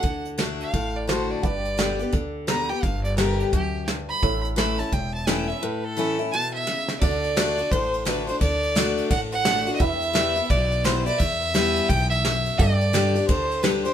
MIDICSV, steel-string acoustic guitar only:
0, 0, Header, 1, 2, 480
1, 0, Start_track
1, 0, Tempo, 348837
1, 50, Time_signature, 4, 2, 24, 8
1, 19176, End_track
2, 0, Start_track
2, 0, Title_t, "Steel-string acoustic guitar"
2, 0, Program_c, 0, 25
2, 37, Note_on_c, 0, 50, 84
2, 501, Note_off_c, 0, 50, 0
2, 518, Note_on_c, 0, 50, 87
2, 529, Note_on_c, 0, 57, 97
2, 534, Note_on_c, 0, 62, 97
2, 549, Note_on_c, 0, 66, 85
2, 987, Note_off_c, 0, 50, 0
2, 992, Note_off_c, 0, 57, 0
2, 995, Note_off_c, 0, 62, 0
2, 1002, Note_off_c, 0, 66, 0
2, 1014, Note_on_c, 0, 45, 90
2, 1478, Note_on_c, 0, 50, 77
2, 1494, Note_on_c, 0, 57, 83
2, 1499, Note_on_c, 0, 62, 80
2, 1513, Note_on_c, 0, 66, 85
2, 1937, Note_off_c, 0, 45, 0
2, 1947, Note_off_c, 0, 50, 0
2, 1955, Note_off_c, 0, 57, 0
2, 1958, Note_off_c, 0, 62, 0
2, 1965, Note_off_c, 0, 66, 0
2, 1972, Note_on_c, 0, 43, 83
2, 2443, Note_on_c, 0, 50, 88
2, 2454, Note_on_c, 0, 55, 94
2, 2464, Note_on_c, 0, 59, 87
2, 2479, Note_on_c, 0, 67, 94
2, 2726, Note_off_c, 0, 67, 0
2, 2734, Note_off_c, 0, 50, 0
2, 2740, Note_off_c, 0, 55, 0
2, 2742, Note_on_c, 0, 67, 62
2, 2744, Note_off_c, 0, 59, 0
2, 2776, Note_on_c, 0, 59, 50
2, 2897, Note_off_c, 0, 43, 0
2, 2922, Note_off_c, 0, 67, 0
2, 2924, Note_on_c, 0, 50, 90
2, 2939, Note_off_c, 0, 59, 0
2, 3385, Note_off_c, 0, 50, 0
2, 3402, Note_on_c, 0, 50, 86
2, 3410, Note_on_c, 0, 55, 86
2, 3421, Note_on_c, 0, 59, 97
2, 3431, Note_on_c, 0, 67, 98
2, 3691, Note_off_c, 0, 67, 0
2, 3694, Note_off_c, 0, 50, 0
2, 3698, Note_off_c, 0, 55, 0
2, 3704, Note_off_c, 0, 59, 0
2, 3707, Note_on_c, 0, 67, 59
2, 3735, Note_on_c, 0, 59, 44
2, 3885, Note_off_c, 0, 67, 0
2, 3899, Note_off_c, 0, 59, 0
2, 3902, Note_on_c, 0, 43, 86
2, 4361, Note_on_c, 0, 50, 82
2, 4373, Note_on_c, 0, 55, 85
2, 4385, Note_on_c, 0, 59, 95
2, 4391, Note_on_c, 0, 67, 96
2, 4822, Note_off_c, 0, 43, 0
2, 4830, Note_off_c, 0, 50, 0
2, 4836, Note_off_c, 0, 55, 0
2, 4842, Note_off_c, 0, 59, 0
2, 4845, Note_off_c, 0, 67, 0
2, 4857, Note_on_c, 0, 42, 92
2, 5318, Note_off_c, 0, 42, 0
2, 5343, Note_on_c, 0, 43, 82
2, 5801, Note_off_c, 0, 43, 0
2, 5820, Note_on_c, 0, 45, 92
2, 6277, Note_on_c, 0, 52, 99
2, 6293, Note_on_c, 0, 57, 89
2, 6300, Note_on_c, 0, 61, 94
2, 6308, Note_on_c, 0, 64, 97
2, 6559, Note_off_c, 0, 64, 0
2, 6572, Note_off_c, 0, 52, 0
2, 6575, Note_on_c, 0, 64, 56
2, 6580, Note_off_c, 0, 57, 0
2, 6584, Note_off_c, 0, 61, 0
2, 6602, Note_on_c, 0, 61, 52
2, 6742, Note_off_c, 0, 45, 0
2, 6760, Note_off_c, 0, 64, 0
2, 6773, Note_off_c, 0, 61, 0
2, 7251, Note_on_c, 0, 52, 89
2, 7265, Note_on_c, 0, 57, 92
2, 7274, Note_on_c, 0, 61, 99
2, 7283, Note_on_c, 0, 64, 95
2, 7539, Note_off_c, 0, 52, 0
2, 7546, Note_off_c, 0, 57, 0
2, 7546, Note_off_c, 0, 64, 0
2, 7551, Note_off_c, 0, 61, 0
2, 7563, Note_on_c, 0, 64, 57
2, 7590, Note_on_c, 0, 61, 45
2, 7733, Note_off_c, 0, 64, 0
2, 7742, Note_on_c, 0, 45, 100
2, 7747, Note_off_c, 0, 61, 0
2, 8210, Note_on_c, 0, 52, 90
2, 8225, Note_on_c, 0, 57, 97
2, 8236, Note_on_c, 0, 61, 104
2, 8244, Note_on_c, 0, 64, 106
2, 8498, Note_off_c, 0, 52, 0
2, 8501, Note_off_c, 0, 64, 0
2, 8506, Note_off_c, 0, 57, 0
2, 8512, Note_off_c, 0, 61, 0
2, 8517, Note_on_c, 0, 64, 67
2, 8547, Note_on_c, 0, 61, 47
2, 8662, Note_off_c, 0, 45, 0
2, 8690, Note_off_c, 0, 64, 0
2, 8705, Note_off_c, 0, 61, 0
2, 8717, Note_on_c, 0, 47, 94
2, 9168, Note_off_c, 0, 47, 0
2, 9177, Note_on_c, 0, 49, 92
2, 9637, Note_off_c, 0, 49, 0
2, 9652, Note_on_c, 0, 50, 92
2, 10117, Note_off_c, 0, 50, 0
2, 10134, Note_on_c, 0, 50, 89
2, 10141, Note_on_c, 0, 57, 109
2, 10151, Note_on_c, 0, 62, 93
2, 10161, Note_on_c, 0, 66, 109
2, 10415, Note_off_c, 0, 66, 0
2, 10419, Note_off_c, 0, 50, 0
2, 10423, Note_off_c, 0, 57, 0
2, 10428, Note_off_c, 0, 62, 0
2, 10431, Note_on_c, 0, 66, 67
2, 10460, Note_on_c, 0, 62, 50
2, 10606, Note_off_c, 0, 66, 0
2, 10621, Note_off_c, 0, 62, 0
2, 10631, Note_on_c, 0, 45, 101
2, 11082, Note_on_c, 0, 50, 93
2, 11096, Note_on_c, 0, 57, 86
2, 11105, Note_on_c, 0, 62, 100
2, 11113, Note_on_c, 0, 66, 92
2, 11367, Note_off_c, 0, 66, 0
2, 11373, Note_off_c, 0, 50, 0
2, 11380, Note_off_c, 0, 57, 0
2, 11383, Note_on_c, 0, 66, 66
2, 11384, Note_off_c, 0, 62, 0
2, 11414, Note_on_c, 0, 62, 48
2, 11545, Note_off_c, 0, 45, 0
2, 11562, Note_off_c, 0, 66, 0
2, 11573, Note_on_c, 0, 50, 99
2, 11577, Note_off_c, 0, 62, 0
2, 12028, Note_off_c, 0, 50, 0
2, 12045, Note_on_c, 0, 50, 96
2, 12061, Note_on_c, 0, 57, 97
2, 12067, Note_on_c, 0, 62, 112
2, 12076, Note_on_c, 0, 66, 107
2, 12509, Note_off_c, 0, 50, 0
2, 12518, Note_off_c, 0, 57, 0
2, 12521, Note_off_c, 0, 62, 0
2, 12525, Note_off_c, 0, 66, 0
2, 12531, Note_on_c, 0, 45, 97
2, 13003, Note_on_c, 0, 50, 87
2, 13011, Note_on_c, 0, 57, 99
2, 13021, Note_on_c, 0, 62, 104
2, 13029, Note_on_c, 0, 66, 105
2, 13284, Note_off_c, 0, 66, 0
2, 13293, Note_off_c, 0, 50, 0
2, 13296, Note_off_c, 0, 57, 0
2, 13301, Note_off_c, 0, 62, 0
2, 13301, Note_on_c, 0, 66, 67
2, 13333, Note_on_c, 0, 62, 46
2, 13454, Note_off_c, 0, 45, 0
2, 13479, Note_off_c, 0, 66, 0
2, 13481, Note_on_c, 0, 40, 93
2, 13495, Note_off_c, 0, 62, 0
2, 13944, Note_on_c, 0, 52, 93
2, 13965, Note_on_c, 0, 55, 103
2, 13969, Note_on_c, 0, 59, 99
2, 13981, Note_on_c, 0, 64, 101
2, 14237, Note_off_c, 0, 64, 0
2, 14242, Note_off_c, 0, 52, 0
2, 14253, Note_off_c, 0, 55, 0
2, 14254, Note_on_c, 0, 64, 62
2, 14255, Note_off_c, 0, 59, 0
2, 14283, Note_on_c, 0, 59, 51
2, 14408, Note_off_c, 0, 40, 0
2, 14435, Note_off_c, 0, 64, 0
2, 14450, Note_off_c, 0, 59, 0
2, 14454, Note_on_c, 0, 47, 94
2, 14919, Note_on_c, 0, 52, 96
2, 14930, Note_on_c, 0, 55, 96
2, 14937, Note_on_c, 0, 59, 90
2, 14948, Note_on_c, 0, 64, 101
2, 15201, Note_off_c, 0, 64, 0
2, 15210, Note_off_c, 0, 52, 0
2, 15215, Note_off_c, 0, 55, 0
2, 15217, Note_on_c, 0, 64, 64
2, 15219, Note_off_c, 0, 59, 0
2, 15251, Note_on_c, 0, 59, 56
2, 15375, Note_off_c, 0, 47, 0
2, 15397, Note_off_c, 0, 64, 0
2, 15406, Note_on_c, 0, 40, 94
2, 15414, Note_off_c, 0, 59, 0
2, 15881, Note_on_c, 0, 52, 96
2, 15895, Note_on_c, 0, 55, 97
2, 15903, Note_on_c, 0, 59, 96
2, 15911, Note_on_c, 0, 64, 91
2, 16330, Note_off_c, 0, 40, 0
2, 16346, Note_off_c, 0, 52, 0
2, 16353, Note_off_c, 0, 55, 0
2, 16358, Note_off_c, 0, 59, 0
2, 16361, Note_off_c, 0, 64, 0
2, 16376, Note_on_c, 0, 40, 98
2, 16834, Note_off_c, 0, 40, 0
2, 16865, Note_on_c, 0, 42, 83
2, 17318, Note_off_c, 0, 42, 0
2, 17331, Note_on_c, 0, 43, 92
2, 17794, Note_on_c, 0, 50, 106
2, 17806, Note_on_c, 0, 55, 97
2, 17819, Note_on_c, 0, 62, 107
2, 17823, Note_on_c, 0, 67, 104
2, 18084, Note_off_c, 0, 67, 0
2, 18086, Note_off_c, 0, 50, 0
2, 18092, Note_off_c, 0, 55, 0
2, 18099, Note_off_c, 0, 62, 0
2, 18100, Note_on_c, 0, 67, 64
2, 18130, Note_on_c, 0, 62, 49
2, 18253, Note_off_c, 0, 43, 0
2, 18278, Note_off_c, 0, 67, 0
2, 18283, Note_on_c, 0, 50, 99
2, 18293, Note_off_c, 0, 62, 0
2, 18736, Note_off_c, 0, 50, 0
2, 18752, Note_on_c, 0, 50, 88
2, 18765, Note_on_c, 0, 55, 92
2, 18774, Note_on_c, 0, 62, 103
2, 18780, Note_on_c, 0, 67, 102
2, 19040, Note_off_c, 0, 67, 0
2, 19046, Note_off_c, 0, 50, 0
2, 19052, Note_off_c, 0, 55, 0
2, 19056, Note_on_c, 0, 67, 64
2, 19057, Note_off_c, 0, 62, 0
2, 19082, Note_on_c, 0, 62, 50
2, 19176, Note_off_c, 0, 62, 0
2, 19176, Note_off_c, 0, 67, 0
2, 19176, End_track
0, 0, End_of_file